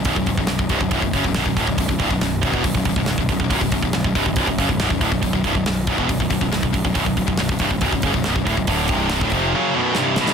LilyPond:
<<
  \new Staff \with { instrumentName = "Distorted electric guitar" } { \clef bass \time 4/4 \key b \phrygian \tempo 4 = 139 <b,, fis,>16 <b,, fis,>16 <b,, fis,>16 <b,, fis,>16 <b,, fis,>16 <b,, fis,>16 <c, g,>16 <b,, fis,>16 <b,, fis,>16 <b,, fis,>16 <fis, cis>16 <b,, fis,>16 <b,, fis,>16 <b,, fis,>16 <d, a,>16 <b,, fis,>16 | <b,, fis,>16 <b,, fis,>16 <c, g,>16 <b,, fis,>16 <b,, fis,>8 <b,, fis,>16 <e, b,>16 <b,, fis,>16 <b,, fis,>16 <b,, fis,>16 <b,, fis,>16 <b,, fis,>16 <b,, fis,>16 <b,, fis,>16 <b,, fis,>16 | <b,, fis,>16 <b,, fis,>16 <b,, fis,>16 <b,, fis,>16 <b,, fis,>16 <b,, fis,>16 <c, g,>16 <b,, fis,>16 <b,, fis,>16 <b,, fis,>16 <fis, cis>16 <b,, fis,>16 <b,, fis,>16 <b,, fis,>16 <d, a,>16 <b,, fis,>16 | <b,, fis,>16 <b,, fis,>16 <c, g,>16 <b,, fis,>16 <b,, fis,>8 <b,, fis,>16 <e, b,>16 <b,, fis,>16 <b,, fis,>16 <b,, fis,>16 <b,, fis,>16 <b,, fis,>16 <b,, fis,>16 <b,, fis,>16 <b,, fis,>16 |
<b,, fis,>16 <b,, fis,>16 <b,, fis,>16 <b,, fis,>16 <b,, fis,>16 <b,, fis,>16 <c, g,>16 <b,, fis,>16 <b,, fis,>16 <b,, fis,>16 <fis, cis>16 <b,, fis,>16 <b,, fis,>16 <b,, fis,>16 <d, a,>16 <b,, fis,>16 | <d, a, d>8 <c, g, c>8. <d, a,>16 <eis, c eis>8 <fis, cis fis>8 <b,, fis, b,>8 <c, g, c>8 <b,, fis, b,>8 | }
  \new Staff \with { instrumentName = "Distorted electric guitar" } { \clef bass \time 4/4 \key b \phrygian <b,, fis,>16 <b,, fis,>16 <b,, fis,>16 <b,, fis,>16 <b,, fis,>16 <b,, fis,>16 <c, g,>16 <b,, fis,>16 <b,, fis,>16 <b,, fis,>16 <fis, cis>16 <b,, fis,>16 <b,, fis,>16 <b,, fis,>16 <d, a,>16 <b,, fis,>16 | <b,, fis,>16 <b,, fis,>16 <c, g,>16 <b,, fis,>16 <b,, fis,>8 <b,, fis,>16 <e, b,>16 <b,, fis,>16 <b,, fis,>16 <b,, fis,>16 <b,, fis,>16 <b,, fis,>16 <b,, fis,>16 <b,, fis,>16 <b,, fis,>16 | <b,, fis,>16 <b,, fis,>16 <b,, fis,>16 <b,, fis,>16 <b,, fis,>16 <b,, fis,>16 <c, g,>16 <b,, fis,>16 <b,, fis,>16 <b,, fis,>16 <fis, cis>16 <b,, fis,>16 <b,, fis,>16 <b,, fis,>16 <d, a,>16 <b,, fis,>16 | <b,, fis,>16 <b,, fis,>16 <c, g,>16 <b,, fis,>16 <b,, fis,>8 <b,, fis,>16 <e, b,>16 <b,, fis,>16 <b,, fis,>16 <b,, fis,>16 <b,, fis,>16 <b,, fis,>16 <b,, fis,>16 <b,, fis,>16 <b,, fis,>16 |
<b,, fis,>16 <b,, fis,>16 <b,, fis,>16 <b,, fis,>16 <b,, fis,>16 <b,, fis,>16 <c, g,>16 <b,, fis,>16 <b,, fis,>16 <b,, fis,>16 <fis, cis>16 <b,, fis,>16 <b,, fis,>16 <b,, fis,>16 <d, a,>16 <b,, fis,>16 | <d, a, d>8 <c, g, c>8. <d, a,>16 <eis, c eis>8 <fis, cis fis>8 <b,, fis, b,>8 <c, g, c>8 <b,, fis, b,>8 | }
  \new Staff \with { instrumentName = "Picked electric bass" } { \clef bass \time 4/4 \key b \phrygian b,,,16 b,,,16 b,,,16 b,,,16 b,,,16 b,,,16 c,,16 b,,,16 b,,,16 b,,,16 fis,,16 b,,,16 b,,,16 b,,,16 d,,16 b,,,16 | b,,,16 b,,,16 c,,16 b,,,16 b,,,8 b,,,16 e,,16 b,,,16 b,,,16 b,,,16 b,,,16 b,,,16 b,,,16 b,,,16 b,,,16 | b,,,16 b,,,16 b,,,16 b,,,16 b,,,16 b,,,16 c,,16 b,,,16 b,,,16 b,,,16 fis,,16 b,,,16 b,,,16 b,,,16 d,,16 b,,,16 | b,,,16 b,,,16 c,,16 b,,,16 b,,,8 b,,,16 e,,16 b,,,16 b,,,16 b,,,16 b,,,16 b,,,16 b,,,16 b,,,16 b,,,16 |
b,,,16 b,,,16 b,,,16 b,,,16 b,,,16 b,,,16 c,,16 b,,,16 b,,,16 b,,,16 fis,,16 b,,,16 b,,,16 b,,,16 d,,16 b,,,16 | d,,8 c,,8. d,,16 eis,,8 r2 | }
  \new DrumStaff \with { instrumentName = "Drums" } \drummode { \time 4/4 <hho bd>16 bd16 <hho bd>16 bd16 <hho sn>16 bd16 <hho bd>16 bd16 <hho bd>16 bd16 <hho bd>16 bd16 <hho sn>16 bd16 <hho bd>16 bd16 | <hho bd>16 bd16 <hho bd>16 bd16 <hho sn>8 <hho bd>16 bd16 <hho bd>16 bd16 <hho bd>16 bd16 <hho sn>16 bd16 <hho bd>16 bd16 | <hho bd>16 bd16 <hho bd>16 bd16 <hho sn>16 bd16 <hho bd>16 bd16 <hho bd>16 bd16 <hho bd>16 bd16 <hho sn>16 bd16 <hho bd>16 bd16 | <hho bd>16 bd16 <hho bd>16 bd16 <hho sn>8 <hho bd>16 bd16 <hho bd>16 bd16 <hho bd>16 bd16 <hho sn>16 bd16 <hho bd>16 bd16 |
<hho bd>16 bd16 <hho bd>16 bd16 <hho sn>16 bd16 <hho bd>16 bd16 <hho bd>16 bd16 <hho bd>16 bd16 <hho sn>16 bd16 <hho bd>16 bd16 | <hho bd>8 <hho bd>8 <hho sn>16 bd16 <hho bd>8 r4 sn8 sn16 sn16 | }
>>